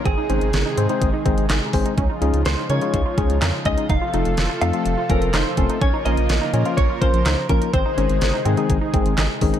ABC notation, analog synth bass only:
X:1
M:4/4
L:1/16
Q:1/4=125
K:Abmix
V:1 name="Analog synth bass" clef=bass
A,,, z A,,, A,,, A,,, z A,, z A,,, z A,,, A,,, A,,, z A,,, z | D,, z D,, D,, D,, z D, z D,, z D,, D,, F,, z D,, z | F,,, z F,,, F,,, F,,, z F,, z F,,, z F,,, F,,, F,,, z F,,, z | B,,, z B,,, B,,, B,,, z B,, z B,,, z B,,, B,,, D,, z B,,, z |
A,,, z A,,, A,,, A,,, z A,, z A,,, z A,,, A,,, A,,, z A,,, z |]